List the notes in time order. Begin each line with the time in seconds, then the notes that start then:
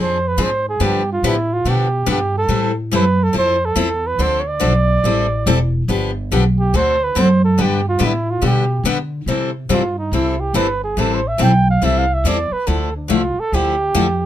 Already playing: F2 F3 C4 D4 G#4
0.00 C5
0.28 B4
0.38 G#2 F3 C4 D4 G#4
0.43 C5
0.69 G#4
0.80 G2 D3 F3 B3 D4 G4
1.13 F4
1.23 A2 D3 F3 B3 D4 G4
1.27 E4
1.53 F4
1.65 B2 D3 F3 B3 D4 G4
1.69 G4
2.06 G2 D3 F3 B3 D4 G4
2.11 G4
2.38 A4
2.48 A2 E3 G3 C4 E4 A4
2.91 F#2 E3 G3 C4 E4 A4 B4
3.23 A4
3.33 F2 F3 C4 E4 A4
3.38 C5
3.65 A4
3.76 E2 F3 C4 E4 A4
4.07 B4
4.18 D2 D3 F3 C4 D4 A4 C5
4.40 C#5
4.48 D5
4.60 B1 D3 F3 C4 D4 A4
5.04 A1 E3 G3 C4 E4 A4
5.46 E1 E3 G3 C4 E4 A4
5.88 G1 D3 F3 B3 D4 G4
6.31 B1 D3 F3 B3 D4 G4
6.59 G4
6.73 D2 D3 A3 C4 F#4 A4 C5
7.04 B4
7.15 F#2 D3 A3 C4 F#4 A4
7.21 C5
7.44 A4
7.58 G2 D3 G3 B3 D4 G4
7.89 F4
7.99 A2 D3 G3 B3 D4 G4
8.06 E4
8.30 F4
8.41 B2 D3 G3 B3 D4 G4
8.47 G4
8.83 D3 G3 B3 D4 G4
9.26 C3 E3 G3 C4 E4 A4
9.69 G2 C3 E3 G3 C4 E4 F4 A4
9.98 D#4
10.12 C2 C3 E3 G3 C4 E4 A4
10.40 G4
10.54 G1 C3 E3 G3 C4 E4 A4 B4
10.84 G#4
10.97 A1 E3 G3 C4 E4 A4
11.14 C5
11.28 E5
11.38 B1 E3 G3 C4 E4 A4
11.42 G5
11.70 F5
11.82 C2 E3 G3 C4 E4 A4 E5
11.98 F5
12.14 E5
12.24 E2 E3 G3 C4 E4 A4 D5
12.51 B4, muted upright bass stroke
12.67 D2 D3 F3 A3 E4 A4
12.96 D4
13.08 C2 D3 F3 A3 E4
13.12 F4
13.37 A4, muted upright bass stroke
13.52 D2 D3 F3 A3 E4 G4
13.94 F2 D3 F3 A3 E4